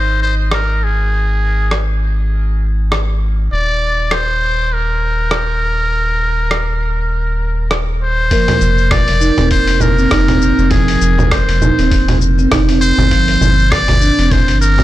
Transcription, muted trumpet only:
0.00 0.22 C5 medium
0.22 0.36 C5 medium
0.53 0.85 A#4 medium
0.83 2.02 G#4 medium
3.52 4.14 D5 loud
4.13 4.75 C5 medium
4.73 7.72 A#4 medium
8.02 8.93 C5 loud
8.92 9.50 D5 loud
9.51 9.83 C5 loud
9.81 10.72 A#4 medium
10.71 11.33 G#4 medium
11.32 12.22 C5 medium
12.81 13.72 C5 loud
13.71 14.33 D5 loud
14.31 14.61 C5 loud
14.61 14.84 A#4 loud

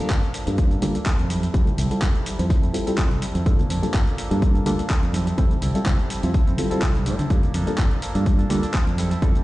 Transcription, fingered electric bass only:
0.10 0.18 G1 medium
0.47 0.75 G2 medium
0.82 0.90 D2 loud
1.19 1.47 F2 medium
1.54 1.62 F2 medium
1.78 1.86 C2 medium
1.91 muted fingered electric bass stroke soft
2.02 2.10 F1 medium
2.39 2.53 F2 medium
2.63 2.70 F2 medium
3.11 3.18 C2 medium
3.22 muted fingered electric bass stroke soft
3.35 3.42 F2 medium
3.46 3.54 G2 loud
3.70 3.78 F2 medium
3.83 muted fingered electric bass stroke soft
3.94 4.02 G1 medium
4.31 4.59 G2 medium
4.66 4.74 D2 loud
5.03 5.31 F2 medium
5.38 5.46 F2 loud
5.62 5.70 C2 medium
5.75 muted fingered electric bass stroke soft
5.86 5.94 F1 medium
6.23 6.37 F2 medium
6.47 6.54 F2 medium
6.71 muted fingered electric bass stroke soft
6.82 7.08 C2 loud
7.07 7.14 A2 medium
7.19 7.26 D3 medium
7.30 7.38 G2 medium
7.54 7.62 F2 medium
7.67 muted fingered electric bass stroke soft
7.78 7.86 G1 medium
8.15 8.43 G2 medium
8.50 8.58 D2 loud
8.87 9.15 F2 medium
9.22 9.30 F2 medium

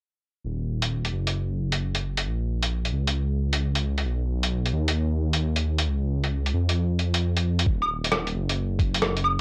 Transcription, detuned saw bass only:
0.45 1.11 D#1 medium
1.12 2.26 F#1 medium
2.25 2.92 A#1 medium
2.92 4.04 C#2 medium
4.05 4.72 B1 medium
4.73 5.87 D#2 medium
5.86 6.52 C#2 medium
6.54 7.66 F2 medium
7.66 8.33 D#1 medium
8.34 9.41 F#1 medium

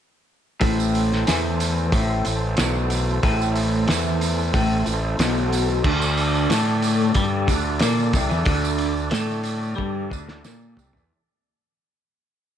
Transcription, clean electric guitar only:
0.61 1.26 A2 loud
1.27 1.92 E3 loud
1.93 2.25 A2 loud
2.26 2.52 A2 medium
2.59 3.23 B2 loud
3.23 3.87 A2 loud
3.88 4.53 E3 loud
4.54 4.86 A2 loud
4.87 5.13 A2 medium
5.21 5.84 B2 loud
5.85 6.49 D3 loud
6.50 7.15 A3 loud
7.16 7.47 G3 loud
7.47 7.80 D3 loud
7.82 8.13 A#3 loud
8.14 8.29 C3 loud
8.30 8.45 E3 loud
8.45 9.11 D3 loud
9.11 9.75 A3 loud
9.76 10.09 G3 loud
10.10 10.43 D3 medium
10.45 10.76 A#3 loud
10.78 10.93 C3 loud
10.94 11.09 E3 loud

